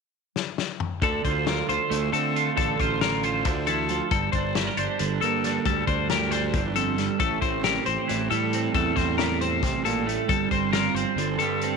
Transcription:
0.36 snare medium
0.58 snare medium
0.80 mid tom medium
1.02 1.20 D2 medium
1.02 2.55 D3 medium
1.02 1.24 A4 medium
1.02 kick medium
1.02 closed hi-hat medium
1.25 1.61 D2 medium
1.25 1.47 F4 medium
1.25 1.46 C5 medium
1.25 kick medium
1.25 closed hi-hat medium
1.46 1.68 F4 soft
1.46 1.68 A#4 medium
1.46 snare loud
1.46 closed hi-hat medium
1.69 1.78 D2 medium
1.69 2.36 F4 medium
1.69 2.13 C5 medium
1.69 closed hi-hat medium
1.90 2.09 D2 medium
1.90 4.15 A3 medium
1.90 closed hi-hat medium
2.13 2.49 D3 medium
2.13 2.55 C4 medium
2.13 2.56 A4 medium
2.13 closed hi-hat medium
2.36 2.80 F4 medium
2.36 closed hi-hat medium
2.56 2.75 A1 medium
2.56 3.44 D3 medium
2.56 2.80 A4 medium
2.56 kick medium
2.56 closed hi-hat medium
2.80 3.46 A1 medium
2.80 3.02 F4 medium
2.80 3.01 C5 medium
2.80 kick medium
2.80 closed hi-hat medium
3.01 3.24 F4 soft
3.01 3.24 A#4 medium
3.01 snare loud
3.01 closed hi-hat medium
3.23 4.15 F4 medium
3.23 3.67 C5 medium
3.23 closed hi-hat medium
3.45 3.99 D2 medium
3.45 3.67 D3 medium
3.45 kick medium
3.45 closed hi-hat medium
3.67 3.90 E3 medium
3.67 4.10 A4 medium
3.67 closed hi-hat medium
3.89 4.12 F3 medium
3.89 closed hi-hat soft
4.11 4.29 G1 medium
4.11 5.63 G2 medium
4.11 4.32 A4 medium
4.11 kick medium
4.11 closed hi-hat medium
4.32 4.69 G1 medium
4.32 4.77 D4 soft
4.32 4.55 C5 medium
4.32 kick medium
4.32 closed hi-hat soft
4.55 4.67 E4 soft
4.55 4.78 A#4 medium
4.55 snare loud
4.55 closed hi-hat medium
4.67 5.66 G4 soft
4.77 4.86 G1 medium
4.77 5.44 D4 medium
4.77 5.21 C5 medium
4.77 closed hi-hat medium
4.99 5.18 G1 medium
4.99 7.20 D3 medium
4.99 closed hi-hat medium
5.21 5.58 G2 medium
5.21 5.64 A#3 medium
5.21 5.65 A4 medium
5.21 closed hi-hat medium
5.44 5.64 D4 medium
5.44 snare soft
5.44 closed hi-hat medium
5.65 5.84 D2 medium
5.65 6.53 G2 medium
5.65 5.87 A4 medium
5.65 kick medium
5.65 closed hi-hat medium
5.87 6.55 D2 medium
5.87 6.31 D4 medium
5.87 6.10 C5 medium
5.87 kick medium
5.87 closed hi-hat soft
6.09 7.22 G4 medium
6.09 6.31 A#4 medium
6.09 snare loud
6.09 closed hi-hat medium
6.31 7.17 D4 medium
6.31 6.75 C5 medium
6.31 snare soft
6.31 closed hi-hat medium
6.53 7.08 G1 medium
6.53 6.75 E2 medium
6.53 kick medium
6.53 closed hi-hat medium
6.75 6.98 F2 medium
6.75 7.19 A4 medium
6.75 closed hi-hat medium
6.98 7.20 G2 medium
6.98 snare soft
6.98 closed hi-hat soft
7.19 7.38 A1 medium
7.19 8.74 A2 medium
7.19 7.41 A4 medium
7.19 kick medium
7.19 closed hi-hat medium
7.42 7.78 A1 medium
7.42 7.85 C4 soft
7.42 7.64 C5 medium
7.42 kick medium
7.42 closed hi-hat soft
7.64 8.78 G4 soft
7.64 7.86 A#4 medium
7.64 snare loud
7.64 closed hi-hat medium
7.85 7.96 A1 medium
7.85 8.54 C4 soft
7.85 8.30 C5 medium
7.85 closed hi-hat soft
8.08 8.28 A1 medium
8.08 8.71 E3 medium
8.08 snare soft
8.08 closed hi-hat medium
8.30 8.67 A2 medium
8.30 10.77 G3 medium
8.30 8.74 A4 medium
8.30 closed hi-hat medium
8.53 8.98 C4 medium
8.53 closed hi-hat soft
8.74 8.92 E2 medium
8.74 9.63 A2 medium
8.74 8.96 A4 medium
8.74 kick medium
8.74 closed hi-hat medium
8.96 9.62 E2 medium
8.96 9.41 C4 soft
8.96 9.18 C5 medium
8.96 kick medium
8.96 snare soft
8.96 closed hi-hat soft
9.18 10.73 G4 soft
9.18 9.40 A#4 medium
9.18 snare loud
9.18 closed hi-hat medium
9.41 10.52 C4 medium
9.41 9.85 C5 medium
9.41 closed hi-hat medium
9.62 10.17 A1 medium
9.62 9.85 C3 medium
9.62 kick loud
9.62 snare soft
9.62 closed hi-hat medium
9.85 10.06 A#2 medium
9.85 10.28 A4 medium
9.85 closed hi-hat medium
10.07 10.29 A2 medium
10.07 closed hi-hat medium
10.28 10.47 G1 medium
10.28 11.77 G2 medium
10.28 10.51 A4 medium
10.28 kick medium
10.28 closed hi-hat medium
10.51 10.87 G1 medium
10.51 10.97 C4 soft
10.51 10.72 C5 medium
10.51 kick medium
10.51 closed hi-hat medium
10.73 11.77 F4 medium
10.73 10.95 A#4 medium
10.73 snare loud
10.73 closed hi-hat medium
10.94 11.04 G1 medium
10.94 11.62 C4 medium
10.94 11.38 C5 medium
10.94 closed hi-hat medium
11.16 11.35 G1 medium
11.16 11.77 D3 medium
11.16 closed hi-hat medium
11.38 11.75 G2 medium
11.38 11.77 G3 medium
11.38 11.77 A4 medium
11.38 closed hi-hat medium
11.61 11.77 C4 medium
11.61 closed hi-hat soft

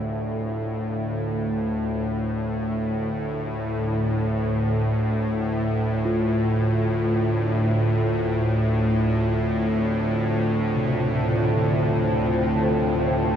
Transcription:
0.00 13.36 D2 medium
0.00 13.36 A2 medium
0.00 1.57 C3 soft
0.00 7.40 D4 medium
0.00 3.03 A4 medium
0.00 7.30 A4 medium
0.00 7.30 E5 medium
0.00 9.76 F5 medium
6.05 13.36 F4 medium
6.10 13.36 D3 medium
6.64 13.36 F4 medium
7.01 13.36 A5 medium
7.19 13.36 C5 medium
8.90 13.36 G5 medium
10.76 13.36 C3 medium

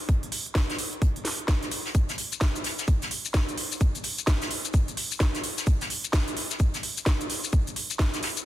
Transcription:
0.09 kick loud
0.09 closed hi-hat medium
0.23 closed hi-hat medium
0.32 closed hi-hat medium
0.32 open hi-hat loud
0.46 closed hi-hat soft
0.55 kick loud
0.55 snare loud
0.55 closed hi-hat medium
0.70 snare soft
0.70 closed hi-hat soft
0.78 closed hi-hat medium
0.78 open hi-hat loud
0.93 closed hi-hat soft
1.02 kick loud
1.02 closed hi-hat medium
1.16 closed hi-hat soft
1.25 snare soft
1.25 closed hi-hat medium
1.25 open hi-hat loud
1.39 closed hi-hat soft
1.48 kick loud
1.48 snare loud
1.48 closed hi-hat medium
1.63 snare soft
1.63 closed hi-hat soft
1.71 closed hi-hat medium
1.71 open hi-hat medium
1.85 snare soft
1.95 kick loud
1.95 closed hi-hat medium
1.95 shaker medium
2.09 snare medium
2.09 closed hi-hat soft
2.09 shaker soft
2.18 closed hi-hat medium
2.18 open hi-hat loud
2.32 closed hi-hat soft
2.32 shaker medium
2.41 kick loud
2.41 snare loud
2.41 closed hi-hat medium
2.41 shaker medium
2.56 closed hi-hat soft
2.56 shaker soft
2.64 snare soft
2.64 closed hi-hat medium
2.64 open hi-hat medium
2.79 snare soft
2.79 closed hi-hat soft
2.79 shaker medium
2.88 kick loud
2.88 closed hi-hat medium
2.88 shaker medium
3.02 snare soft
3.02 closed hi-hat soft
3.02 shaker soft
3.11 closed hi-hat medium
3.11 open hi-hat loud
3.25 shaker medium
3.34 kick loud
3.34 snare loud
3.34 closed hi-hat medium
3.34 shaker medium
3.49 closed hi-hat medium
3.49 shaker soft
3.58 closed hi-hat medium
3.58 open hi-hat medium
3.72 shaker medium
3.81 kick loud
3.81 closed hi-hat medium
3.81 shaker medium
3.95 closed hi-hat medium
3.95 shaker soft
4.03 closed hi-hat medium
4.03 open hi-hat loud
4.18 closed hi-hat soft
4.18 shaker medium
4.27 kick loud
4.27 snare loud
4.27 closed hi-hat medium
4.27 shaker medium
4.42 snare soft
4.42 closed hi-hat medium
4.42 shaker soft
4.50 closed hi-hat medium
4.50 open hi-hat medium
4.65 closed hi-hat soft
4.65 shaker medium
4.74 kick loud
4.74 closed hi-hat medium
4.74 shaker medium
4.88 closed hi-hat medium
4.88 shaker soft
4.97 closed hi-hat medium
4.97 open hi-hat loud
5.11 shaker medium
5.20 kick loud
5.20 snare loud
5.20 closed hi-hat medium
5.20 shaker medium
5.35 snare soft
5.35 closed hi-hat medium
5.35 shaker soft
5.43 closed hi-hat medium
5.43 open hi-hat medium
5.58 snare soft
5.58 shaker medium
5.67 kick loud
5.67 closed hi-hat medium
5.67 shaker medium
5.81 snare medium
5.81 closed hi-hat medium
5.81 shaker soft
5.90 closed hi-hat medium
5.90 open hi-hat medium
6.04 closed hi-hat soft
6.04 shaker medium
6.13 kick loud
6.13 snare loud
6.13 closed hi-hat medium
6.13 shaker medium
6.28 closed hi-hat medium
6.28 shaker soft
6.37 closed hi-hat medium
6.37 open hi-hat medium
6.51 snare soft
6.51 closed hi-hat soft
6.51 shaker medium
6.59 kick loud
6.59 closed hi-hat medium
6.59 shaker medium
6.74 snare soft
6.74 closed hi-hat medium
6.74 shaker soft
6.83 closed hi-hat medium
6.83 open hi-hat loud
6.98 shaker medium
7.06 kick loud
7.06 snare loud
7.06 closed hi-hat medium
7.06 shaker medium
7.21 closed hi-hat medium
7.21 shaker soft
7.30 closed hi-hat medium
7.30 open hi-hat medium
7.44 shaker medium
7.52 kick loud
7.52 closed hi-hat medium
7.52 shaker medium
7.67 closed hi-hat medium
7.67 shaker soft
7.76 closed hi-hat medium
7.76 open hi-hat loud
7.91 closed hi-hat soft
7.91 shaker medium
7.99 kick loud
7.99 snare loud
7.99 closed hi-hat medium
7.99 shaker medium
8.14 snare medium
8.14 closed hi-hat medium
8.14 shaker soft
8.23 snare loud
8.23 closed hi-hat medium
8.23 open hi-hat medium
8.37 closed hi-hat soft
8.37 shaker medium

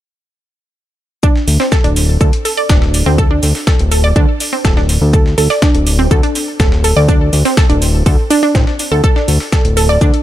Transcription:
1.23 1.27 D4 medium
1.23 kick loud
1.23 shaker medium
1.36 snare soft
1.48 1.58 D2 loud
1.48 open hi-hat medium
1.48 shaker medium
1.60 1.66 C4 medium
1.60 snare soft
1.72 1.82 A4 loud
1.72 kick loud
1.72 snare loud
1.72 shaker medium
1.84 2.18 D1 medium
1.84 1.94 D4 medium
1.84 closed hi-hat soft
1.96 open hi-hat loud
1.96 shaker medium
2.21 2.31 D2 loud
2.21 2.27 A4 medium
2.21 kick loud
2.21 shaker medium
2.33 closed hi-hat soft
2.45 2.52 A4 medium
2.45 open hi-hat medium
2.45 shaker medium
2.57 2.67 D5 medium
2.69 3.03 D1 medium
2.69 2.73 D4 loud
2.69 kick loud
2.69 snare loud
2.69 shaker medium
2.82 snare soft
2.94 open hi-hat medium
2.94 shaker medium
3.06 3.40 D2 medium
3.06 3.13 C4 medium
3.18 3.28 A4 medium
3.18 kick loud
3.18 shaker medium
3.31 3.40 D4 medium
3.43 3.53 D2 medium
3.43 open hi-hat loud
3.43 shaker medium
3.55 snare soft
3.55 open hi-hat medium
3.67 3.73 A4 medium
3.67 kick loud
3.67 snare loud
3.67 shaker medium
3.79 4.13 D1 medium
3.79 closed hi-hat soft
3.91 3.98 A4 medium
3.91 open hi-hat loud
3.91 shaker medium
4.04 4.13 D5 medium
4.16 4.26 D2 medium
4.16 4.20 D4 loud
4.16 kick loud
4.16 shaker medium
4.40 open hi-hat loud
4.40 shaker medium
4.53 4.59 C4 medium
4.65 4.98 D1 medium
4.65 4.74 A4 loud
4.65 kick loud
4.65 snare loud
4.65 shaker medium
4.77 4.86 D4 medium
4.77 snare soft
4.89 open hi-hat loud
4.89 shaker medium
5.01 5.35 D2 loud
5.13 5.20 A4 medium
5.13 kick loud
5.13 shaker medium
5.26 snare soft
5.38 5.48 D2 loud
5.38 5.44 A4 medium
5.38 open hi-hat loud
5.38 shaker medium
5.50 5.60 D5 medium
5.50 snare soft
5.62 5.66 D4 loud
5.62 kick loud
5.62 snare loud
5.62 shaker medium
5.75 6.08 D1 medium
5.75 closed hi-hat soft
5.87 open hi-hat loud
5.87 shaker medium
5.99 6.05 C4 medium
6.11 6.21 D2 loud
6.11 6.21 A4 medium
6.11 kick loud
6.11 shaker medium
6.23 6.33 D4 medium
6.23 closed hi-hat soft
6.35 open hi-hat loud
6.35 shaker medium
6.60 6.93 D1 loud
6.60 6.66 A4 medium
6.60 kick loud
6.60 snare loud
6.60 shaker medium
6.72 snare soft
6.84 6.91 A4 medium
6.84 open hi-hat loud
6.84 shaker medium
6.96 7.30 D2 loud
6.96 7.06 D5 medium
7.09 7.12 D4 loud
7.09 kick loud
7.09 shaker medium
7.33 7.43 D2 loud
7.33 open hi-hat loud
7.33 shaker medium
7.45 7.52 C4 medium
7.45 snare soft
7.45 open hi-hat medium
7.57 7.67 A4 loud
7.57 kick loud
7.57 snare loud
7.57 shaker medium
7.70 8.03 D1 medium
7.70 7.79 D4 medium
7.70 closed hi-hat soft
7.82 open hi-hat loud
7.82 shaker medium
8.06 8.17 D2 loud
8.06 8.12 A4 medium
8.06 kick loud
8.06 open hi-hat medium
8.06 shaker medium
8.30 8.37 D4 loud
8.30 open hi-hat loud
8.30 shaker medium
8.43 8.47 D4 medium
8.55 8.65 A1 medium
8.55 8.64 C4 medium
8.55 kick loud
8.55 snare loud
8.55 shaker medium
8.67 snare soft
8.79 open hi-hat loud
8.79 shaker medium
8.92 9.02 D2 medium
8.92 8.98 A4 medium
9.04 9.13 A4 loud
9.04 kick loud
9.04 shaker medium
9.16 9.25 D4 medium
9.16 snare soft
9.28 9.39 D2 medium
9.28 open hi-hat loud
9.28 shaker medium
9.40 snare soft
9.52 9.59 A4 medium
9.52 kick loud
9.52 snare loud
9.52 shaker medium
9.65 9.98 D1 medium
9.65 closed hi-hat soft
9.77 9.83 A4 medium
9.77 open hi-hat loud
9.77 shaker medium
9.89 9.99 D5 medium
10.01 10.12 D2 loud
10.01 10.05 D4 medium
10.01 kick loud
10.01 shaker medium
10.14 closed hi-hat soft

